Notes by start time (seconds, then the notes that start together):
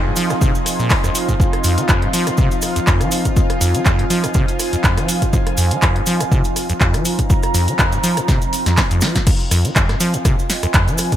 Already playing: F3 C4 D#4 F4 G#4 F5 C6
0.06 G#2
0.16 F3, open hi-hat, cabasa
0.30 G2, cross-stick, cabasa
0.41 C3, kick, cabasa
0.55 cabasa
0.66 cross-stick, open hi-hat, cabasa
0.79 A#2, cabasa
0.90 F2, kick, clap, open hi-hat, cabasa
1.04 F2, cross-stick, cabasa
1.15 open hi-hat, cabasa
1.29 G#2, kick, cabasa
1.40 F2 F4, kick, cabasa
1.53 cross-stick, closed hi-hat
1.64 F2, open hi-hat, cabasa
1.78 F3, closed hi-hat, cabasa
1.89 F2, kick, cross-stick, clap, cabasa
2.02 G#2, closed hi-hat
2.13 F3, open hi-hat, cabasa
2.27 G2, cross-stick, closed hi-hat, cabasa
2.38 C3, kick, cabasa
2.51 closed hi-hat, cabasa
2.62 cross-stick, open hi-hat, cabasa
2.76 F2, closed hi-hat, cabasa
2.85 F2 G#5, kick, clap, cabasa
3.01 F3, cross-stick, closed hi-hat, cabasa
3.11 open hi-hat, cabasa
3.25 G2, kick, closed hi-hat, cabasa
3.36 F2, kick, cabasa
3.50 cross-stick, closed hi-hat
3.61 F2, open hi-hat, cabasa
3.74 F3, closed hi-hat, cabasa
3.86 F2, kick, cross-stick, clap, cabasa
3.99 G#2, closed hi-hat
4.10 F3, open hi-hat, cabasa
4.24 G2, cross-stick, closed hi-hat, cabasa
4.34 C3, kick, cabasa
4.48 closed hi-hat, cabasa
4.59 cross-stick, open hi-hat, cabasa
4.73 F2, closed hi-hat, cabasa
4.84 F2, kick, clap, cabasa
4.97 F3, cross-stick, closed hi-hat, cabasa
5.08 open hi-hat, cabasa
5.22 G2, kick, closed hi-hat, cabasa
5.33 F2, kick, cabasa
5.47 cross-stick, closed hi-hat
5.57 F2, open hi-hat, cabasa
5.71 F3, closed hi-hat, cabasa
5.82 F2, kick, cross-stick, clap, cabasa
5.96 G#2, closed hi-hat
6.06 F3, open hi-hat, cabasa
6.20 G2, cross-stick, closed hi-hat, cabasa
6.32 C3, kick, cabasa
6.44 closed hi-hat, cabasa
6.56 cross-stick, open hi-hat, cabasa
6.69 F2, closed hi-hat, cabasa
6.79 F2 A#5, kick, clap, cabasa
6.94 F3, cross-stick, closed hi-hat, cabasa
7.05 open hi-hat, cabasa
7.19 G2, kick, closed hi-hat, cabasa
7.30 F2, kick, cabasa
7.43 cross-stick, closed hi-hat, cabasa
7.54 F2, open hi-hat, cabasa
7.68 F3, closed hi-hat, cabasa
7.79 F2, kick, cross-stick, clap, cabasa
7.92 G#2, closed hi-hat, cabasa
8.04 F3, open hi-hat, cabasa
8.17 G2, cross-stick, closed hi-hat, cabasa
8.28 C3, kick, snare, cabasa
8.42 closed hi-hat, cabasa
8.53 open hi-hat, cabasa
8.66 F2, snare, closed hi-hat, cabasa
8.77 G2, kick, snare, clap, open hi-hat, cabasa
8.91 F2, closed hi-hat, cabasa
9.01 F3, snare, open hi-hat, cabasa
9.15 F2, kick, snare, closed hi-hat, cabasa
9.27 F2 C4, kick, closed hi-hat, crash, cabasa
9.33 F4
9.40 closed hi-hat
9.51 F2, cross-stick, open hi-hat, cabasa
9.59 G#5
9.64 F3 D#5, closed hi-hat, cabasa
9.76 F2, kick, clap, closed hi-hat, cabasa
9.89 G#2, cross-stick, snare, closed hi-hat
10.00 F3, open hi-hat, cabasa
10.14 G2, closed hi-hat, cabasa
10.25 C3, kick, cross-stick, closed hi-hat, cabasa
10.39 cabasa
10.50 snare, open hi-hat, cabasa
10.63 F2, cross-stick, closed hi-hat, cabasa
10.74 F2, kick, clap, closed hi-hat, cabasa
10.88 F3, closed hi-hat, cabasa
10.98 cross-stick, open hi-hat, cabasa
11.12 G2, kick, closed hi-hat, cabasa